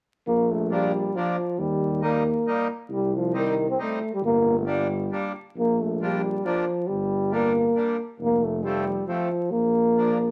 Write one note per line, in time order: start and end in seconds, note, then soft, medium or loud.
0.27 1.13 A#1 medium
0.27 0.53 A#3 medium
0.51 0.73 A3 medium
0.71 0.92 F3 medium
0.71 1.17 G3 medium
0.71 0.92 A#3 soft
0.71 0.92 D4 medium
1.15 1.60 F3 medium
1.15 1.36 F3 medium
1.15 1.36 A#3 soft
1.15 1.37 D4 medium
1.58 2.44 D#2 medium
1.58 2.05 G3 medium
2.02 2.23 G3 soft
2.02 2.23 A#3 medium
2.02 2.70 A#3 medium
2.02 2.23 D#4 medium
2.47 2.68 G3 soft
2.47 2.68 A#3 soft
2.47 2.68 D#4 medium
2.90 3.76 C2 medium
2.90 3.12 G3 medium
3.15 3.34 F3 medium
3.33 3.66 D#3 medium
3.33 3.55 G3 medium
3.33 3.55 C4 medium
3.33 3.55 D#4 soft
3.69 3.79 C4 medium
3.79 3.99 G3 medium
3.79 4.11 A3 medium
3.79 3.99 C4 medium
3.79 3.99 D#4 medium
4.13 4.23 G3 medium
4.21 5.08 G1 medium
4.21 4.55 A#3 medium
4.58 4.63 A3 medium
4.66 4.87 G3 soft
4.66 4.87 A#3 soft
4.66 4.88 D4 medium
4.70 5.32 G3 medium
5.11 5.32 G3 soft
5.11 5.32 A#3 soft
5.11 5.32 D4 medium
5.56 6.42 A#1 medium
5.56 5.82 A#3 medium
5.80 6.03 A3 medium
6.01 6.21 F3 soft
6.01 6.47 G3 medium
6.01 6.22 A#3 soft
6.01 6.22 D4 medium
6.45 6.88 F3 medium
6.45 6.65 F3 medium
6.45 6.65 A#3 soft
6.45 6.65 D4 medium
6.87 7.74 G1 medium
6.87 7.36 G3 medium
7.32 7.53 G3 medium
7.32 7.53 A#3 soft
7.32 8.00 A#3 medium
7.32 7.53 D4 medium
7.76 7.96 G3 medium
7.76 7.97 A#3 medium
7.76 7.97 D4 medium
8.19 9.05 F1 medium
8.19 8.45 A#3 loud
8.43 8.65 A3 medium
8.63 8.85 F3 medium
8.63 9.07 G3 medium
8.63 8.85 A3 soft
8.63 8.85 C4 medium
9.07 9.52 F3 medium
9.07 9.29 F3 medium
9.07 9.29 A3 soft
9.07 9.29 C4 soft
9.51 10.31 A#1 medium
9.51 10.31 A#3 medium
9.97 10.18 F3 medium
9.97 10.18 A#3 soft
9.97 10.18 D4 medium